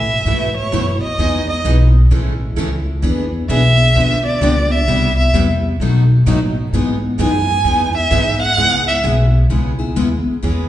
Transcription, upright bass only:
0.00 0.24 A2 medium
0.25 0.71 G#2 medium
0.72 0.99 F#2 medium
1.02 muted upright bass stroke soft
1.18 1.63 E2 medium
1.64 2.09 B1 medium
2.11 2.56 A1 medium
2.56 3.01 C#2 medium
3.03 3.48 E2 medium
3.49 3.94 B1 medium
3.95 4.40 D2 medium
4.41 4.86 C#2 medium
4.88 5.32 C2 medium
5.33 5.78 E2 medium
5.80 6.25 B2 medium
6.27 6.71 A2 medium
6.73 7.17 G#2 medium
7.19 7.63 F#2 medium
7.65 8.10 E2 medium
8.11 8.56 G#2 medium
8.57 9.02 C#2 medium
9.04 9.49 B1 medium
9.50 9.94 C#2 medium
9.96 10.23 D#2 medium
10.26 muted upright bass stroke soft
10.43 10.69 E2 medium

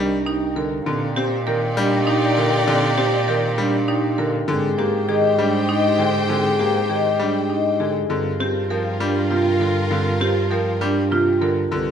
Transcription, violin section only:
0.00 0.67 D#4 medium
0.00 0.67 A#4 medium
0.86 4.29 D#4 loud
0.86 4.29 D5 loud
4.48 7.91 C5 medium
4.48 7.91 G5 loud
8.10 11.53 F4 medium
8.10 11.53 A#4 medium
11.72 11.91 D#4 medium
11.72 11.91 A#4 medium

